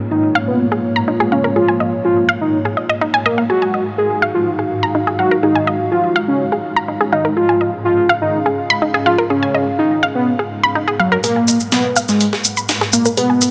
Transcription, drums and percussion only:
11.24 closed hi-hat, shaker
11.48 closed hi-hat, shaker
11.60 shaker
11.72 snare, closed hi-hat, shaker
11.96 closed hi-hat, shaker
12.09 snare, shaker
12.20 closed hi-hat, shaker
12.33 snare
12.45 closed hi-hat, shaker
12.57 shaker
12.69 snare, closed hi-hat, shaker
12.81 snare
12.93 closed hi-hat, shaker
13.05 shaker
13.17 closed hi-hat, shaker
13.41 closed hi-hat, shaker

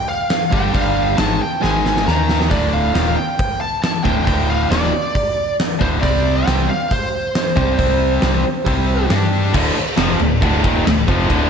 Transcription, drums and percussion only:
0.30 snare, open hi-hat
0.53 kick
0.74 kick, open hi-hat
1.18 snare, open hi-hat
1.64 snare
1.86 snare
1.96 snare
2.08 snare
2.29 snare
2.41 snare
2.51 kick, open hi-hat
2.95 snare, open hi-hat
3.39 kick, open hi-hat
3.83 snare, open hi-hat
4.05 kick
4.27 kick, open hi-hat
4.72 snare, open hi-hat
4.83 snare
5.15 kick, open hi-hat
5.60 snare, open hi-hat
5.81 kick
6.03 kick, open hi-hat
6.47 snare, open hi-hat
6.91 kick, open hi-hat
7.35 snare, open hi-hat
7.57 kick
7.79 kick, open hi-hat
8.22 snare, open hi-hat
8.66 kick, open hi-hat
9.10 snare, open hi-hat
9.54 kick, crash
9.76 crash
9.97 snare, crash
10.19 crash
10.42 kick, crash
10.64 kick, crash
10.87 snare, crash
11.08 kick, crash
11.30 kick, crash

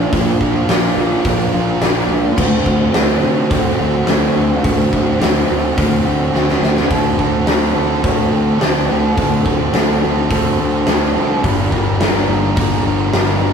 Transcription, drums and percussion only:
0.13 kick, open hi-hat
0.41 kick
0.69 snare, open hi-hat
1.25 kick, open hi-hat
1.82 snare, open hi-hat
2.38 kick, crash
2.66 kick
2.94 snare, open hi-hat
3.51 kick, open hi-hat
4.07 snare, open hi-hat
4.64 kick, open hi-hat
4.93 kick
5.22 snare, open hi-hat
5.78 kick, open hi-hat
6.34 snare
6.49 snare
6.63 snare
6.77 snare
6.91 kick, open hi-hat
7.19 kick
7.47 snare, open hi-hat
8.04 kick, open hi-hat
8.61 snare, open hi-hat
9.18 kick, open hi-hat
9.46 kick
9.74 snare, open hi-hat
10.31 kick, open hi-hat
10.87 snare, open hi-hat
11.44 kick, open hi-hat
11.72 kick
12.01 snare, open hi-hat
12.57 kick, open hi-hat
13.13 snare, open hi-hat

